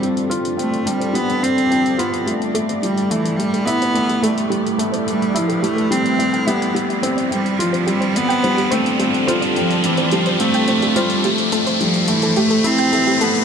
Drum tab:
HH |xxxxxxxxxxxxxxxx|xxxxxxxxxxxxxxxx|xxxxxxxxxxxxxxxx|xxxxxxxxxxxxxxxx|

HH |xxxxxxxxxxxxxxxx|xxxxxxxxxxxxxxxx|